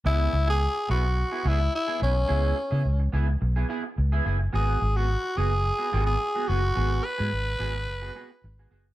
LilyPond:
<<
  \new Staff \with { instrumentName = "Tenor saxophone" } { \time 4/4 \key cis \minor \tempo 4 = 107 e'8. gis'8. fis'4 e'8 e'8 cis'8~ | cis'4. r2 r8 | gis'8. fis'8. gis'4~ gis'16 gis'8. fis'8~ | fis'8 b'2. r8 | }
  \new Staff \with { instrumentName = "Clean electric guitar" } { \time 4/4 \key cis \minor <b e' gis'>8 r16 <b e' gis'>16 r8 <b e' gis'>16 r8 <b e' gis'>16 <b e' gis'>16 r8 <b e' gis'>16 <b e' gis'>16 r16 | <b e' gis'>8 r16 <b e' gis'>16 r8 <b e' gis'>16 r8 <b e' gis'>16 <b e' gis'>16 r8 <b e' gis'>16 <b e' gis'>16 r16 | <b fis' gis'>8 r16 <b fis' gis'>16 r8 <b fis' gis'>16 r8 <b fis' gis'>16 <b fis' gis'>16 r8 <b fis' gis'>16 <b fis' gis'>16 r16 | <b fis' gis'>8 r16 <b fis' gis'>16 r8 <b fis' gis'>16 r8 <b fis' gis'>16 <b fis' gis'>16 r8 <b fis' gis'>16 <b fis' gis'>16 r16 | }
  \new Staff \with { instrumentName = "Fingered electric bass" } { \clef bass \time 4/4 \key cis \minor cis,8 cis,8. r16 b,,8. r16 cis,8 r8 b,,8 | cis,8 r16 cis16 cis,8 cis,8 b,,8 r8 cis,8 fis,,8 | gis,,8 gis,,8. r16 fis,,8. r16 gis,,8 r8 fis,,8 | gis,,8 r16 gis,16 gis,,8 gis,,8 fis,,8 r8 gis,,8 fis,,8 | }
>>